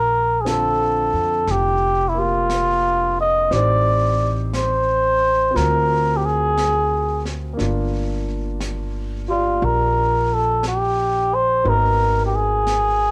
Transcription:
Already playing: A#1 A#4
0.41 C4 G#4
0.46 D3 F4 A4, brush sweep, snare, hi-hat pedal
1.13 F2
1.47 F1 G4, brush sweep, snare
2.09 E4
2.14 A#3 G4
2.19 F4
2.50 brush sweep, snare, hi-hat pedal
3.21 D#5
3.51 A1 C4 D#4 G4 D5, brush sweep, snare
3.55 C5
4.53 C5, brush sweep, snare, hi-hat pedal
5.51 C4 F4
5.56 D2 F#4 A#4, brush sweep, snare
5.62 A#4
6.17 G4
6.25 G#4
6.57 brush sweep, snare, hi-hat pedal
7.25 snare
7.53 A#3 D4
7.59 G1 F4, brush sweep, snare
8.60 brush sweep, snare, hi-hat pedal
9.28 F4 G4 D5
9.61 A#1 A#4, brush sweep
10.34 A4
10.63 brush sweep, snare, hi-hat pedal
10.68 G4
11.35 C5
11.64 G#1 B3 D#4 F#4 A#4, brush sweep
11.69 A#4
12.26 G4
12.35 G#4
12.67 brush sweep, snare, hi-hat pedal

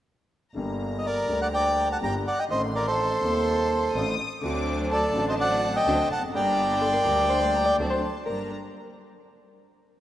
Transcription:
0.54 G1 G2 D3 G3 A#3 A#5
0.59 G4
0.99 D#5
1.06 A#4 D5
1.28 D2 D3 G3 A#3 G4
1.42 D5 F#5
1.54 D5 G5
1.92 F#5 A5
2.02 G1 G2 D3 G3 A#3 G4 G5 A#5
2.27 D5 F#5
2.39 D#5 G5
2.48 A1 A2 D#3 A3 C4 C5 D#5 C6
2.53 A4
2.75 A#4 D5
2.87 A4 C5
3.21 D#1 D#2 D#3 A3 C4
3.25 A4
3.94 A1 A2 D#3 A3 C4 A4 D#6
4.41 D2 D3 F#3 A3 C4 D4 F#4 D6
4.92 A4 D5 A5
5.13 A1 A2 D3 F#3 A3 C4 D4
5.17 F#4
5.29 C5 D#5
5.40 D5 F#5
5.76 D#5 G5
5.85 D2 D3 F#3 A3 C4 D4 F#4
6.10 F1 F#5 A5
6.17 E2
6.22 F2
6.28 F#2
6.32 G1 G2 D3 G3 A#3 D4 G4 D5 G5 A#5
6.82 A4 C6
6.94 A#4
7.05 D2 D3 G3 A#3 D4 G4 A#5
7.30 C5 C6
7.55 A#5
7.66 D5
7.78 D2 D3 F#3 A3 C4 D4 F#4 A5
7.90 C5
8.26 G1 G2 G3 A#3 D4 G4 A#4 A#5

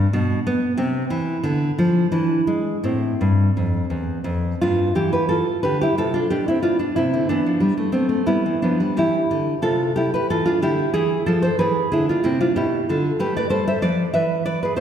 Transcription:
0.13 B2 D4
0.47 B3
0.77 C3 C4
1.10 E3
1.43 D3 B3
1.78 F3
2.12 E3 D4
2.47 G#3
2.84 A2 C4
3.21 G2
3.57 F2
3.90 E2
4.24 F2
4.61 G2 D4 F4
4.95 E3 E4 G4
5.13 G4 B4
5.29 F4 A4
5.63 D3 G4 B4
5.81 E4 G4
5.98 C3 F4 A4
6.14 D4 F4
6.30 B2 D4 G4
6.48 C4 E4
6.62 D4 F4
6.79 B3 D4
6.96 C3 C4 E4
7.14 D3
7.29 E3 B3 D4
7.46 F3
7.60 G3
7.77 A3
7.92 A3 B3 C4
8.09 A3
8.26 G3 B3 E4
8.46 E3
8.62 F3 B3 D4
8.80 G3
8.97 E3 E4 G4
9.31 D3
9.62 C3 F4 A4
9.96 E4 G4
10.14 G4 B4
10.30 E3 F4 A4
10.46 D4 F4
10.62 D3 E4 G4
10.94 E3 E4 G#4
11.26 F3 F4 A4
11.42 A4 C5
11.59 E3 G#4 B4
11.92 D3 E4 G#4
12.09 D4 F4
12.23 C3 C4 E4
12.41 D4 F4
12.56 B2 E4 G4
12.89 D3 F4 A4
13.19 A3 G4 B4
13.37 B4 D5
13.50 G3 A4 C5
13.68 C5 E5
13.82 F3 B4 D5
14.14 E3 B4 E5
14.46 B4 D5
14.63 G#4 B4
14.76 A3 C5

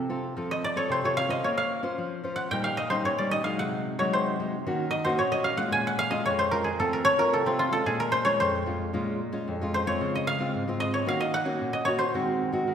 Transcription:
Already playing: C3 A4 C5
0.09 C4 F4 A4
0.36 F3 C4 F4 A4
0.51 D#5
0.64 D5
0.76 C4 F4 A4 C#5
0.89 C3 C5
1.04 C4 F4 A4 C#5
1.17 F5
1.28 C#4 F4 C5 D#5
1.44 A#3 C#5
1.58 F5
1.83 C#4 F4 C5
1.98 F3
2.24 C#4 F4 C5
2.36 F#5
2.51 A#2 G3 C#4 D#4 G5
2.64 F5
2.77 D#5
2.90 G3 C#4 D#4 C5
3.05 A#2 C#5
3.18 G3 C#4 D#4 D5
3.31 D#5
3.44 F#3 G#3 D#4 F5
3.59 C3 F#5
3.99 F#3 G#3 D#4 C#5
4.13 C3 C5
4.40 F#3 G#3 D#4
4.66 D#3 A#3 C#4 F#4
4.91 D#5
5.05 A#3 C#4 F#4 C5
5.19 A#2 C#5
5.32 A#3 C#4 F#4 D#5
5.44 F5
5.57 G#3 C#4 F4 F#5
5.72 A#2 G#5
5.87 F#5
5.99 F5
6.10 G#3 C#4 F4 D#5
6.26 F2 C#5
6.39 C5
6.51 G#3 C#4 F4 A#4
6.64 G#4
6.80 F3 A3 C4 F4 A4
6.93 A#4
7.05 C#5
7.18 A3 C4 F4 A#4
7.33 C3 A4
7.46 A3 C4 F4
7.59 F4
7.71 G#3 C#4 F4 A4
7.86 A#2 G#4
8.00 A#4
8.12 C5
8.25 G#3 C#4 F4 C#5
8.40 F2 C5
8.66 G#3 C#4 F4
8.93 A#2 G#3 C#4 F4
9.32 G#3 C#4 F4
9.48 F2
9.61 G#3 C#4 F4
9.74 C5
9.86 G#3 C4 F4 C#5
10.01 C#3
10.15 D#5
10.27 F5
10.39 G#3 C4 F4
10.54 G#2
10.68 G#3 C4 F4
10.80 D#5
10.94 C#5
11.06 D#3 A#3 C#4 F#4 F5
11.21 D#5
11.34 F#5
11.45 A#3 C#4 F#4
11.61 A#2
11.73 D#5
11.85 A#3 C#4 F#4 C#5
11.99 C5
12.14 D#3 G#3 C4 F#4
12.52 G#3 C4 F#4
12.67 D#3

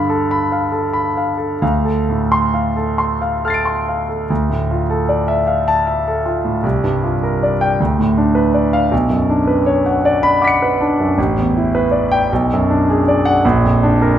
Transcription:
Already playing: G2 D3 A4 F5 B5
0.09 A4
0.31 B5
0.52 F5
0.72 A4
0.93 B5
1.17 F5
1.37 A4
1.62 D2 F5
1.85 A4
2.09 A2
2.32 C6
2.54 F5
2.76 A4
2.98 C6
3.22 F5
3.45 A4 F6 A6
3.50 C7
3.54 D7
3.65 C6
3.88 F5
4.09 A4
4.30 D2
4.50 A2
4.71 F4
4.90 A4
5.09 D5
5.28 E5
5.47 F5
5.68 A5
5.87 E5
6.08 A4
6.26 F4
6.45 A2
6.63 C2
6.84 G2
7.04 F4
7.23 A#4
7.43 D5
7.61 G5
7.80 D2
7.99 A2
8.17 D4
8.35 B4
8.54 D5
8.73 F5
8.92 B1
9.10 F#2
9.30 D4
9.47 B4
9.66 C#5
9.86 F#5
10.05 D5
10.23 B5
10.42 F#5 D6 B6
10.47 C#7
10.62 B4
10.81 D4
11.00 F#2
11.18 A1
11.38 E2
11.57 E4
11.75 B4
11.91 D5
12.12 G5
12.33 B1
12.53 F#2
12.70 D4
12.89 G#4
13.08 D5
13.25 F#5
13.45 A#1
13.64 F2
13.83 D4
14.02 A#4

